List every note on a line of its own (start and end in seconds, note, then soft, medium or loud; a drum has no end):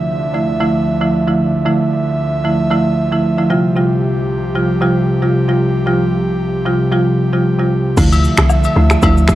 0.00 3.46 D2 medium
0.00 0.28 D3 medium
0.00 3.46 D3 medium
0.00 0.28 F3 medium
0.00 7.93 F3 medium
0.00 0.29 A3 medium
0.00 0.29 E4 medium
0.00 1.64 E5 medium
0.34 0.58 D3 medium
0.34 0.59 F3 medium
0.34 0.59 A3 medium
0.34 0.59 E4 medium
0.60 0.98 D3 medium
0.60 0.98 F3 medium
0.60 0.98 A3 medium
0.60 0.98 E4 loud
1.01 1.17 D3 medium
1.01 1.17 F3 medium
1.01 1.17 A3 medium
1.01 1.18 E4 medium
1.27 1.44 D3 medium
1.27 1.44 F3 medium
1.27 1.44 A3 medium
1.27 1.44 E4 medium
1.65 2.39 D3 medium
1.65 2.39 F3 medium
1.65 2.39 A3 medium
1.65 2.39 E4 medium
1.65 3.48 E5 medium
2.44 2.69 D3 medium
2.44 2.69 F3 medium
2.44 2.69 A3 medium
2.44 2.69 E4 medium
2.71 3.08 D3 medium
2.71 3.08 F3 medium
2.71 3.08 A3 medium
2.71 3.09 E4 loud
3.12 3.28 D3 medium
3.12 3.28 F3 medium
3.12 3.28 A3 medium
3.12 3.28 E4 medium
3.38 3.54 D3 medium
3.38 3.49 F3 medium
3.38 3.54 A3 medium
3.38 3.55 E4 medium
3.50 7.93 C2 medium
3.50 3.74 C3 medium
3.50 7.93 C3 medium
3.50 3.74 F3 medium
3.50 3.74 G3 medium
3.50 3.75 F4 loud
3.50 7.93 G4 medium
3.76 4.49 C3 medium
3.76 4.50 F3 medium
3.76 4.50 G3 medium
3.76 4.50 F4 loud
4.55 4.79 C3 medium
4.55 4.80 F3 medium
4.55 4.80 G3 medium
4.55 4.80 F4 medium
4.81 5.19 C3 medium
4.81 5.19 F3 medium
4.81 5.19 G3 medium
4.81 5.19 F4 loud
5.22 5.38 C3 medium
5.22 5.39 F3 medium
5.22 5.39 G3 medium
5.22 5.39 F4 medium
5.48 5.65 C3 medium
5.48 5.65 F3 medium
5.48 5.65 G3 medium
5.48 5.65 F4 medium
5.86 6.60 C3 medium
5.86 6.60 F3 medium
5.86 6.60 G3 medium
5.86 6.60 F4 medium
6.65 6.90 C3 medium
6.65 6.90 F3 medium
6.65 6.90 G3 medium
6.65 6.90 F4 medium
6.92 7.29 C3 medium
6.92 7.29 F3 medium
6.92 7.29 G3 medium
6.92 7.29 F4 loud
7.33 7.49 C3 medium
7.33 7.49 F3 medium
7.33 7.49 G3 medium
7.33 7.49 F4 medium
7.59 7.75 C3 medium
7.59 7.75 F3 medium
7.59 7.76 G3 medium
7.59 7.76 F4 medium
7.97 8.28 D2 loud
7.97 8.71 D3 medium
7.97 9.35 D3 medium
7.97 9.35 F3 medium
7.97 8.71 F3 medium
7.97 9.35 A3 medium
7.97 8.71 A3 medium
7.97 8.71 E4 medium
7.97 9.35 E5 medium
7.97 kick loud
7.97 crash medium
7.97 shaker medium
8.12 high agogo medium
8.12 shaker soft
8.24 shaker medium
8.37 8.67 C2 medium
8.37 finger snap loud
8.37 cross-stick loud
8.37 shaker medium
8.49 low woodblock medium
8.49 shaker medium
8.64 high agogo medium
8.64 shaker medium
8.76 8.96 D2 loud
8.76 9.01 D3 medium
8.76 9.01 F3 medium
8.76 9.01 A3 medium
8.76 9.01 E4 medium
8.90 finger snap medium
8.90 cross-stick medium
8.90 shaker medium
9.02 9.34 D2 loud
9.02 9.35 D3 medium
9.02 9.35 F3 medium
9.02 9.35 A3 medium
9.02 9.35 E4 loud
9.02 kick medium
9.02 high agogo medium
9.02 shaker medium
9.18 shaker soft
9.28 finger snap medium
9.28 kick medium
9.28 cross-stick medium
9.28 shaker medium